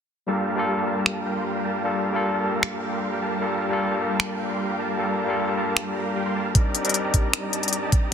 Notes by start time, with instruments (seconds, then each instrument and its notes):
0.27 tine electric piano G3 A#3 D4 F4 A4, supersaw synth G3 G4 A#4 F5 A5
0.47 supersaw synth G3 G4 A#4 F5 A5
0.55 tine electric piano G3 A#3 D4 F4 A4, supersaw synth G3 G4 A#4 F5 A5
0.77 supersaw synth G3 G4 A#4 F5 A5
0.86 supersaw synth G3 G4 A#4 F5 A5
1.06 supersaw synth G3 G4 A#4 F5 A5, finger snap
1.26 supersaw synth G3 G4 A#4 F5 G5
1.36 supersaw synth G3 G4 A#4 F5 C6
1.55 supersaw synth G3 G4 A#4 F5 G5
1.65 supersaw synth G3 G4 A#4 F5 A5
1.83 tine electric piano G3 A#3 D4 F4 A4, supersaw synth G3 G4 A#4 F5 A5
2.04 supersaw synth G3 G4 A#4 F5 A5
2.12 tine electric piano G3 A#3 D4 F4 A4, supersaw synth G3 G4 A#4 F5 A5
2.34 supersaw synth G3 G4 A#4 F5 A5
2.43 supersaw synth G3 G4 A#4 F5 A5
2.63 supersaw synth G3 G4, finger snap
2.82 supersaw synth G3 G4 A#4 F5 G5
2.93 supersaw synth G3 G4 A#4 F5 C6
3.12 supersaw synth G3 G4 A#4 F5 G5
3.22 supersaw synth G3 G4 A#4 F5 A5
3.40 tine electric piano G3 A#3 D4 F4 A4, supersaw synth G3 G4 A#4 F5 A5
3.61 supersaw synth G3 G4 A#4 F5 A5
3.69 tine electric piano G3 A#3 D4 F4 A4, supersaw synth G3 G4 A#4 F5 A5
3.91 supersaw synth G3 G4 A#4 F5 A5
4.00 supersaw synth G3 G4 A#4 F5 A5
4.20 supersaw synth A#4, finger snap
4.39 supersaw synth G3 G4 A#4 F5 G5
4.49 supersaw synth G3 G4 A#4 F5 C6
4.69 supersaw synth G3 G4 A#4 F5 G5
4.79 supersaw synth G3 G4 A#4 F5 A5
4.97 tine electric piano G3 A#3 D4 F4 A4, supersaw synth G3 G4 A#4 F5 A5
5.18 supersaw synth G3 G4 A#4 F5 A5
5.26 tine electric piano G3 A#3 D4 F4 A4, supersaw synth G3 G4 A#4 F5 A5
5.47 supersaw synth G3 G4 A#4 F5 A5
5.57 supersaw synth G3 G4 A#4 F5 A5
5.77 supersaw synth G3 G4 A#4 F5 A5, finger snap
5.96 supersaw synth G3 G4 A#4 F5 A#5
6.16 supersaw synth G3 G4 A#4 F5 G5
6.26 supersaw synth G3 G4 A#4 F5 C6
6.35 supersaw synth G3 G4 A#4 F5 A5
6.54 tine electric piano G3 C4 D4 D#4 A#4, supersaw synth G3 G4 D5 D#5 A#5, kick, closed hi-hat
6.75 supersaw synth G3 G4 D5 D#5 A#5, closed hi-hat
6.83 tine electric piano G3 C4 D4 D#4, supersaw synth G3 G4 D5 D#5 A#5, closed hi-hat
6.87 tine electric piano A#4, closed hi-hat
6.94 closed hi-hat
7.04 supersaw synth G3 G4 D5 D#5 A#5
7.14 supersaw synth G3 G4 D5 D#5 A#5, kick, closed hi-hat
7.33 supersaw synth G3 G4 D5 D#5 A#5, finger snap, closed hi-hat
7.53 supersaw synth G3 G4 D5 D#5 A5, closed hi-hat
7.63 supersaw synth G3 G4 D5 D#5 A#5, closed hi-hat
7.68 closed hi-hat
7.73 closed hi-hat
7.83 supersaw synth G3 G4 D5 D#5 A5
7.92 supersaw synth G3 G4 D5 D#5 A#5, kick, closed hi-hat